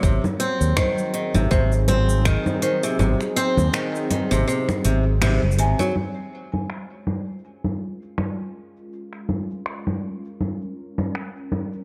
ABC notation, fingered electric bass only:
X:1
M:4/4
L:1/16
Q:"Swing 16ths" 1/4=81
K:Db
V:1 name="Fingered electric bass" clef=bass
A,,, z2 E,, z3 A,,, A,,,4 z4 | A,,, z2 E,, z3 A,,, z2 A,,,3 G,,, A,,, z | z16 | z16 |]